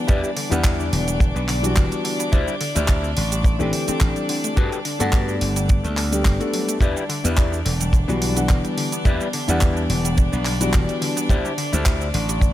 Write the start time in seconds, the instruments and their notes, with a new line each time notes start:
Already playing: grand piano E3 G3 B3 D4 F#5, string section D4 D5
0.07 slap bass E2, synth arpeggio sound D3, clean electric guitar E4 G4 B4 D5, kick, closed hi-hat, shaker
0.23 synth arpeggio sound G3, shaker
0.36 synth arpeggio sound D3, open hi-hat
0.50 slap bass E2, grand piano E3 G3 B3 D4 F#5, synth arpeggio sound B3, clean electric guitar E4 G4 B4 D5, closed hi-hat, shaker
0.64 synth arpeggio sound D3, kick, clap, closed hi-hat, shaker
0.80 synth arpeggio sound D4, shaker
0.92 slap bass E1, synth arpeggio sound D3, open hi-hat
1.08 synth arpeggio sound G3, closed hi-hat, shaker
1.20 synth arpeggio sound D3, muted clean electric guitar stroke, kick, closed hi-hat, shaker
1.35 slap bass B1, synth arpeggio sound B3, muted clean electric guitar stroke, shaker
1.48 synth arpeggio sound D3, muted clean electric guitar stroke, clap, open hi-hat
1.62 grand piano E3 G3 B3 D4 F#4, synth arpeggio sound D4, closed hi-hat, shaker
1.76 slap bass E1, synth arpeggio sound D3, kick, clap, closed hi-hat, shaker
1.92 synth arpeggio sound G3, closed hi-hat, shaker
2.04 synth arpeggio sound D3, open hi-hat
2.20 synth arpeggio sound B3, closed hi-hat, shaker
2.32 slap bass D2, synth arpeggio sound D3, clean electric guitar E4 G4 C5 D5, kick, closed hi-hat, shaker
2.48 synth arpeggio sound G3, shaker
2.61 synth arpeggio sound D3, open hi-hat
2.75 slap bass D2, synth arpeggio sound A3, clean electric guitar E4 G4 C5 D5, closed hi-hat, shaker
2.88 synth arpeggio sound D3, kick, clap, closed hi-hat, shaker
3.04 synth arpeggio sound C4, shaker
3.17 slap bass A1, synth arpeggio sound D3, open hi-hat
3.32 synth arpeggio sound G3, closed hi-hat, shaker
3.44 synth arpeggio sound D3, muted clean electric guitar stroke, kick, closed hi-hat, shaker
3.59 slap bass A1, grand piano E3 A3 C4 D4 G4, synth arpeggio sound A3, muted clean electric guitar stroke, shaker
3.72 synth arpeggio sound D3, muted clean electric guitar stroke, open hi-hat
3.87 grand piano E3 A3 C4 D4 G4, synth arpeggio sound C4, muted slap bass stroke, closed hi-hat, shaker
4.01 slap bass A1, synth arpeggio sound D3, kick, clap, closed hi-hat, shaker
4.16 synth arpeggio sound G3, closed hi-hat, shaker
4.29 synth arpeggio sound D3, open hi-hat
4.44 synth arpeggio sound A3, closed hi-hat, shaker
4.56 slap bass G2, synth arpeggio sound D3, clean electric guitar F#4 G4 A4 B4, kick, closed hi-hat, shaker
4.72 synth arpeggio sound G3, closed hi-hat, shaker
4.85 synth arpeggio sound D3, open hi-hat
4.99 slap bass G2, grand piano G3 A3 B3 D4 F#5, synth arpeggio sound A3, clean electric guitar F#4 G4 A4 B4, closed hi-hat, shaker
5.13 synth arpeggio sound D3, kick, clap, closed hi-hat, shaker
5.28 synth arpeggio sound B3, shaker
5.41 slap bass G1, synth arpeggio sound D3, open hi-hat
5.56 synth arpeggio sound G3, closed hi-hat, shaker
5.68 synth arpeggio sound D3, muted clean electric guitar stroke, kick, closed hi-hat, shaker
5.84 slap bass D2, synth arpeggio sound A3, muted clean electric guitar stroke, closed hi-hat, shaker
5.97 synth arpeggio sound A3, muted clean electric guitar stroke, clap, open hi-hat
6.11 grand piano G3 A3 B3 D4 G4, synth arpeggio sound G3, closed hi-hat, shaker
6.25 slap bass G1, synth arpeggio sound G3, kick, clap, open hi-hat, shaker
6.40 grand piano G3 A3 B3 D4 A4, synth arpeggio sound F#4, closed hi-hat, shaker
6.53 synth arpeggio sound F#3, open hi-hat
6.68 synth arpeggio sound A3, closed hi-hat, shaker
6.80 slap bass E2, synth arpeggio sound D3, string section D4 D5, clean electric guitar E4 G4 B4 D5, kick, closed hi-hat, shaker
6.96 synth arpeggio sound G3, shaker
7.09 synth arpeggio sound D3, open hi-hat
7.24 slap bass E2, synth arpeggio sound B3, clean electric guitar E4 G4 B4 D5, closed hi-hat, shaker
7.37 synth arpeggio sound D3, kick, clap, closed hi-hat, shaker
7.52 synth arpeggio sound D4, shaker
7.65 slap bass E1, synth arpeggio sound D3, open hi-hat
7.81 synth arpeggio sound G3, closed hi-hat, shaker
7.93 synth arpeggio sound D3, muted clean electric guitar stroke, kick, closed hi-hat, shaker
8.08 slap bass B1, grand piano E3 G3 B3 D4 F#4, synth arpeggio sound B3, muted clean electric guitar stroke, shaker
8.21 synth arpeggio sound D3, muted clean electric guitar stroke, open hi-hat
8.35 grand piano E3 G3 B3 D4 F#5, synth arpeggio sound B3, closed hi-hat, shaker
8.49 slap bass E1, synth arpeggio sound D3, kick, clap, closed hi-hat, shaker
8.64 synth arpeggio sound G3, closed hi-hat, shaker
8.77 synth arpeggio sound D3, open hi-hat
8.92 synth arpeggio sound B3, closed hi-hat, shaker
9.05 slap bass E2, synth arpeggio sound D3, clean electric guitar E4 G4 B4 D5, kick, closed hi-hat, shaker
9.21 synth arpeggio sound G3, shaker
9.33 synth arpeggio sound D3, open hi-hat
9.48 slap bass E2, grand piano E3 G3 B3 D4 F#5, synth arpeggio sound B3, clean electric guitar E4 G4 B4 D5, closed hi-hat, shaker
9.61 synth arpeggio sound D3, kick, clap, closed hi-hat, shaker
9.77 synth arpeggio sound D4, shaker
9.90 slap bass E1, synth arpeggio sound D3, open hi-hat
10.05 synth arpeggio sound G3, closed hi-hat, shaker
10.17 synth arpeggio sound D3, muted clean electric guitar stroke, kick, closed hi-hat, shaker
10.32 slap bass B1, synth arpeggio sound B3, muted clean electric guitar stroke, shaker
10.45 synth arpeggio sound D3, muted clean electric guitar stroke, clap, open hi-hat
10.60 grand piano E3 G3 B3 D4 F#4, synth arpeggio sound B3, closed hi-hat, shaker
10.73 slap bass E1, synth arpeggio sound D3, kick, clap, closed hi-hat, shaker
10.89 synth arpeggio sound G3, closed hi-hat, shaker
11.02 synth arpeggio sound D3, open hi-hat
11.17 synth arpeggio sound B3, closed hi-hat, shaker
11.29 slap bass D2, synth arpeggio sound D3, clean electric guitar E4 G4 C5 D5, kick, closed hi-hat, shaker
11.45 synth arpeggio sound G3, shaker
11.58 synth arpeggio sound D3, open hi-hat
11.72 slap bass D2, synth arpeggio sound A3, clean electric guitar E4 G4 C5 D5, closed hi-hat, shaker
11.86 synth arpeggio sound D3, kick, clap, closed hi-hat, shaker
12.01 synth arpeggio sound C4, shaker
12.14 slap bass A1, synth arpeggio sound D3, open hi-hat
12.29 synth arpeggio sound G3, closed hi-hat, shaker
12.41 synth arpeggio sound D3, muted clean electric guitar stroke, kick, closed hi-hat, shaker